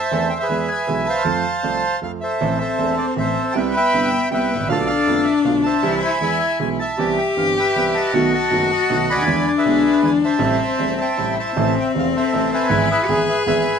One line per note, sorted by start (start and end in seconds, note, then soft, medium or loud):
0.00 0.47 C5 medium
0.00 0.38 E5 medium
0.00 0.28 A5 medium
0.11 0.28 E2 medium
0.11 0.28 E3 medium
0.11 0.28 A3 medium
0.11 0.28 C4 medium
0.11 0.28 A4 medium
0.29 0.34 G5 medium
0.40 0.94 G#4 medium
0.40 0.70 B4 medium
0.40 0.69 E5 medium
0.49 0.65 E2 medium
0.49 0.66 E3 medium
0.49 0.66 G#3 soft
0.49 0.66 B3 soft
0.49 0.66 G#4 soft
0.68 1.23 B4 medium
0.68 1.23 E5 medium
0.68 1.07 G#5 medium
0.87 1.04 B1 soft
0.87 1.04 B2 soft
0.87 1.03 E3 soft
0.87 1.04 G#3 soft
0.87 1.04 B3 soft
0.87 1.04 G#4 soft
1.06 2.00 C5 medium
1.06 2.00 F5 medium
1.06 1.98 A5 loud
1.25 1.41 F2 medium
1.25 1.41 F3 medium
1.25 1.41 A3 medium
1.25 1.41 C4 medium
1.25 1.41 A4 medium
1.63 1.80 C2 medium
1.63 1.80 C3 soft
1.63 1.80 F3 soft
1.63 1.80 A3 soft
1.63 1.80 C4 soft
1.63 1.80 A4 soft
2.02 2.19 F2 soft
2.02 2.18 F3 soft
2.02 2.19 A3 soft
2.02 2.18 C4 soft
2.02 2.18 A4 soft
2.02 2.12 F5 medium
2.21 2.59 A4 medium
2.21 2.59 C5 medium
2.21 2.57 E5 medium
2.41 2.57 A1 medium
2.41 2.57 A2 medium
2.41 2.57 E3 medium
2.41 2.57 A3 medium
2.41 3.57 C4 medium
2.41 2.57 C4 medium
2.41 2.57 A4 medium
2.58 3.14 A4 medium
2.58 3.14 C5 medium
2.58 2.95 E5 medium
2.78 2.95 E1 soft
2.78 2.95 E2 soft
2.78 2.95 E3 soft
2.78 2.95 A3 soft
2.78 2.95 C4 soft
2.78 2.96 A4 soft
2.98 3.07 D5 medium
3.16 3.33 A1 soft
3.16 3.33 A2 medium
3.16 3.33 E3 soft
3.16 3.34 A3 soft
3.16 3.33 C4 soft
3.16 3.33 A4 soft
3.16 3.54 A4 medium
3.16 3.54 C5 medium
3.16 3.52 E5 medium
3.51 3.72 C2 medium
3.51 3.71 G3 medium
3.51 3.74 G5 medium
3.51 3.56 A5 medium
3.55 3.72 C3 medium
3.55 4.71 B3 medium
3.55 3.72 B3 medium
3.55 3.72 E4 medium
3.55 4.09 B4 medium
3.55 3.75 E5 medium
3.74 4.29 E5 medium
3.74 4.29 G5 medium
3.74 4.28 B5 loud
3.93 4.10 G1 soft
3.93 4.10 G2 medium
3.93 4.10 C3 soft
3.93 4.10 G3 soft
3.93 4.10 B3 soft
3.93 4.10 E4 soft
4.31 4.48 C2 soft
4.31 4.48 C3 medium
4.31 4.48 G3 soft
4.31 4.48 B3 soft
4.31 4.48 E4 soft
4.31 4.69 B4 medium
4.31 4.69 E5 medium
4.31 4.67 G5 medium
4.55 4.61 G#1 soft
4.60 4.65 A1 medium
4.66 4.71 A#1 medium
4.66 4.86 B1 medium
4.66 4.86 B2 medium
4.66 4.86 D3 medium
4.66 4.86 A3 medium
4.66 4.86 B3 medium
4.66 5.85 D4 medium
4.66 4.86 F4 medium
4.66 4.85 F5 loud
4.72 4.88 A4 medium
4.72 4.88 D5 medium
4.87 5.42 A4 medium
4.87 5.42 D5 medium
4.87 5.27 F5 loud
5.07 5.23 F1 medium
5.07 5.24 F2 medium
5.07 5.23 D3 soft
5.07 5.23 A3 soft
5.07 5.24 B3 soft
5.07 5.24 F4 soft
5.24 5.33 E5 medium
5.44 5.61 B1 medium
5.44 5.61 B2 medium
5.44 5.61 D3 soft
5.44 5.61 A3 soft
5.44 5.61 B3 soft
5.44 5.61 F4 soft
5.44 5.53 F5 medium
5.64 6.19 C5 medium
5.64 6.03 E5 medium
5.64 5.99 A5 medium
5.83 5.99 C2 medium
5.83 5.99 C3 medium
5.83 5.99 E3 medium
5.83 5.99 G3 medium
5.83 5.99 C4 medium
5.83 6.20 E4 medium
5.83 6.00 G4 medium
6.02 6.58 E5 medium
6.02 6.38 G#5 medium
6.02 6.38 B5 medium
6.20 6.37 E2 soft
6.20 6.38 E3 soft
6.20 6.38 G#3 soft
6.20 6.37 B3 soft
6.20 6.75 E4 medium
6.20 6.38 G#4 soft
6.40 6.58 G#5 medium
6.59 6.76 B1 soft
6.59 6.76 B2 soft
6.59 6.76 E3 soft
6.59 6.76 G#3 soft
6.59 6.76 B3 soft
6.59 6.76 G#4 soft
6.59 6.69 G#5 medium
6.79 7.35 E5 medium
6.79 7.16 A5 medium
6.98 7.15 C2 medium
6.98 7.15 C3 medium
6.98 7.15 E3 medium
6.98 7.15 B3 medium
6.98 7.15 C4 medium
6.98 7.15 G4 medium
6.98 8.16 G4 loud
7.18 7.27 G5 medium
7.37 7.54 G1 soft
7.37 7.53 G2 soft
7.37 7.53 E3 soft
7.37 7.53 B3 soft
7.37 7.53 C4 soft
7.37 7.54 G4 soft
7.37 7.46 F5 medium
7.57 8.11 B4 medium
7.57 8.11 E5 medium
7.57 7.96 G5 medium
7.76 7.92 C2 soft
7.76 7.92 C3 soft
7.76 7.92 E3 soft
7.76 7.92 B3 soft
7.76 7.92 C4 soft
7.76 7.92 G4 soft
7.94 8.33 D#5 medium
7.94 8.33 F#5 medium
7.94 8.30 A5 medium
8.14 8.30 B1 medium
8.14 8.30 B2 medium
8.14 8.30 D#3 medium
8.14 8.30 A3 medium
8.14 8.30 B3 medium
8.14 9.28 F#4 loud
8.14 8.30 F#4 medium
8.33 8.71 D#5 medium
8.33 8.71 F#5 medium
8.33 8.68 A5 medium
8.50 8.67 F#1 medium
8.50 8.67 F#2 medium
8.50 8.67 D#3 soft
8.50 8.67 A3 soft
8.50 8.67 B3 soft
8.50 8.67 F#4 soft
8.71 9.24 D#5 medium
8.71 9.24 F#5 medium
8.71 9.06 A5 medium
8.90 9.05 B1 medium
8.90 9.06 B2 medium
8.90 9.06 D#3 soft
8.90 9.05 A3 soft
8.90 9.05 B3 soft
8.90 9.06 F#4 soft
9.10 9.18 C#2 soft
9.10 9.63 D5 medium
9.10 9.46 G#5 medium
9.10 9.48 B5 loud
9.18 9.23 D2 medium
9.18 9.27 D#2 medium
9.26 9.43 E2 medium
9.26 9.43 D3 medium
9.26 9.43 E3 medium
9.26 9.43 G#3 medium
9.26 9.43 B3 medium
9.26 10.42 D4 loud
9.26 9.43 E4 medium
9.48 9.52 G#5 medium
9.58 10.10 G#4 medium
9.58 10.10 B4 medium
9.58 10.01 E5 medium
9.66 9.81 B1 medium
9.66 9.82 B2 medium
9.66 9.81 D3 soft
9.66 9.81 G#3 soft
9.66 9.81 B3 soft
9.66 9.82 E4 medium
10.02 10.19 E2 soft
10.02 10.18 D3 soft
10.02 10.19 E3 medium
10.02 10.19 G#3 soft
10.02 10.19 B3 soft
10.02 10.19 E4 soft
10.02 10.12 G#5 medium
10.24 10.99 C5 medium
10.24 11.00 E5 medium
10.24 11.34 A5 medium
10.39 10.56 A1 medium
10.39 10.56 A2 medium
10.39 10.56 C3 medium
10.39 10.56 G3 medium
10.39 10.56 A3 medium
10.39 11.19 C4 medium
10.39 10.56 E4 medium
10.78 10.95 E1 soft
10.78 10.95 E2 soft
10.78 10.95 C3 soft
10.78 10.95 G3 soft
10.78 10.95 A3 soft
10.78 10.95 E4 soft
11.01 11.38 C5 medium
11.01 11.38 E5 medium
11.01 11.36 G5 medium
11.17 11.34 A1 soft
11.17 11.35 A2 soft
11.17 11.34 C3 soft
11.17 11.34 G3 soft
11.17 11.34 A3 soft
11.17 11.55 E4 medium
11.17 11.35 E4 soft
11.39 11.92 C5 medium
11.39 11.92 E5 medium
11.39 11.74 A5 medium
11.56 11.73 A1 medium
11.56 11.73 A2 medium
11.56 11.73 C3 medium
11.56 11.73 E3 medium
11.56 11.73 A3 medium
11.56 12.71 C4 loud
11.56 11.73 E4 medium
11.80 11.88 G5 medium
11.94 12.11 E1 medium
11.94 12.11 E2 medium
11.94 12.11 C3 soft
11.94 12.11 E3 soft
11.94 12.11 A3 soft
11.94 12.11 E4 medium
11.99 12.06 F5 medium
12.16 12.68 A4 medium
12.16 12.68 C5 medium
12.16 12.51 E5 medium
12.33 12.49 A1 medium
12.33 12.49 A2 medium
12.33 12.49 C3 soft
12.33 12.49 E3 soft
12.33 12.49 A3 soft
12.33 12.50 E4 medium
12.54 12.90 B4 medium
12.54 12.90 E5 medium
12.54 12.89 G#5 medium
12.69 12.87 G#1 medium
12.69 12.86 G#2 medium
12.69 12.86 E3 medium
12.69 12.86 G#3 medium
12.69 12.86 B3 medium
12.69 13.10 E4 loud
12.69 12.87 G#4 medium
12.91 13.43 G#4 medium
12.91 13.43 B4 medium
12.91 13.26 E5 medium
13.08 13.25 G#1 medium
13.08 13.25 G#2 medium
13.08 13.25 E3 soft
13.08 13.25 G#3 soft
13.08 13.25 B3 soft
13.08 13.79 G#4 loud
13.08 13.25 G#4 soft
13.29 13.37 E5 medium
13.46 13.63 G#1 medium
13.46 13.62 G#2 medium
13.46 13.62 E3 soft
13.46 13.62 G#3 soft
13.46 13.63 B3 soft
13.46 13.63 G#4 medium
13.46 13.79 B4 medium
13.46 13.79 E5 medium
13.46 13.79 G#5 medium